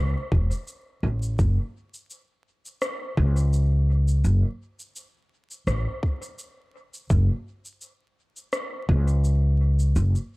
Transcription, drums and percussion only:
0.32 kick loud
0.51 shaker soft
0.68 shaker soft
1.23 shaker soft
1.39 kick loud
1.39 shaker soft
1.94 shaker soft
2.10 shaker soft
2.66 shaker soft
2.82 cross-stick medium
2.82 shaker soft
3.17 kick medium
3.37 shaker soft
3.53 shaker soft
4.08 shaker soft
4.24 shaker soft
4.79 shaker soft
4.96 shaker soft
5.51 shaker soft
5.67 cross-stick medium
5.67 shaker soft
6.03 kick medium
6.23 shaker soft
6.39 shaker soft
6.94 shaker soft
7.10 kick loud
7.10 shaker soft
7.65 shaker soft
7.81 shaker soft
8.37 shaker soft
8.53 cross-stick medium
8.53 shaker soft
8.89 kick medium
9.08 shaker soft
9.24 shaker soft
9.80 shaker soft
9.96 shaker soft
10.15 shaker soft

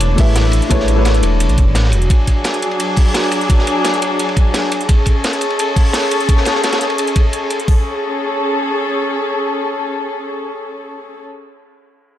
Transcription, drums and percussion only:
0.00 closed hi-hat medium
0.00 ride medium
0.18 kick loud
0.18 closed hi-hat medium
0.18 open hi-hat medium
0.36 snare loud
0.36 closed hi-hat medium
0.36 ride medium
0.45 ride soft
0.52 closed hi-hat medium
0.52 ride medium
0.62 closed hi-hat soft
0.71 kick loud
0.71 closed hi-hat medium
0.71 ride medium
0.80 snare soft
0.88 closed hi-hat medium
0.88 ride medium
1.05 snare loud
1.05 closed hi-hat medium
1.05 ride medium
1.14 closed hi-hat soft
1.23 closed hi-hat medium
1.23 ride medium
1.40 closed hi-hat medium
1.40 ride medium
1.49 closed hi-hat soft
1.49 ride soft
1.58 kick loud
1.58 closed hi-hat medium
1.58 ride medium
1.75 snare loud
1.75 closed hi-hat medium
1.75 ride medium
1.84 snare soft
1.92 closed hi-hat medium
1.92 ride medium
2.02 closed hi-hat soft
2.10 kick loud
2.10 closed hi-hat medium
2.10 ride medium
2.27 kick medium
2.27 closed hi-hat medium
2.27 ride medium
2.44 snare loud
2.44 closed hi-hat medium
2.44 ride medium
2.54 closed hi-hat soft
2.62 closed hi-hat medium
2.62 ride medium
2.71 ride soft
2.80 closed hi-hat medium
2.80 ride medium
2.96 kick loud
2.96 closed hi-hat medium
2.96 open hi-hat medium
3.14 snare loud
3.14 closed hi-hat medium
3.14 ride medium
3.23 ride soft
3.31 closed hi-hat medium
3.31 ride medium
3.41 closed hi-hat soft
3.50 kick loud
3.50 closed hi-hat medium
3.50 ride medium
3.59 snare soft
3.67 closed hi-hat medium
3.67 ride medium
3.85 snare loud
3.85 closed hi-hat medium
3.85 ride medium
3.94 closed hi-hat soft
4.02 closed hi-hat medium
4.02 ride medium
4.19 closed hi-hat medium
4.19 ride medium
4.29 ride soft
4.36 kick loud
4.36 closed hi-hat medium
4.36 ride medium
4.54 snare loud
4.54 closed hi-hat medium
4.54 ride medium
4.63 snare soft
4.72 closed hi-hat medium
4.72 ride medium
4.81 closed hi-hat soft
4.89 kick loud
4.89 closed hi-hat medium
4.89 ride medium
5.06 kick medium
5.06 closed hi-hat medium
5.06 ride medium
5.24 snare loud
5.24 closed hi-hat medium
5.24 ride medium
5.33 closed hi-hat soft
5.41 closed hi-hat medium
5.41 ride medium
5.50 ride soft
5.59 closed hi-hat medium
5.59 ride medium
5.76 kick medium
5.76 closed hi-hat medium
5.76 open hi-hat medium
5.93 snare loud
5.93 closed hi-hat medium
5.93 ride medium
6.03 ride soft
6.11 closed hi-hat medium
6.11 ride medium
6.20 closed hi-hat soft
6.29 kick loud
6.29 closed hi-hat medium
6.29 ride medium
6.37 snare soft
6.45 snare medium
6.45 closed hi-hat medium
6.45 ride medium
6.55 snare soft
6.64 snare loud
6.64 closed hi-hat medium
6.64 ride medium
6.72 snare medium
6.72 closed hi-hat soft
6.72 ride medium
6.81 snare soft
6.81 closed hi-hat medium
6.90 ride medium
6.98 closed hi-hat medium
6.98 ride medium
7.07 closed hi-hat soft
7.07 ride soft
7.16 kick loud
7.16 closed hi-hat medium
7.16 ride medium
7.33 closed hi-hat medium
7.33 ride medium
7.50 closed hi-hat medium
7.50 ride medium
7.60 closed hi-hat soft
7.68 kick loud
7.68 open hi-hat medium

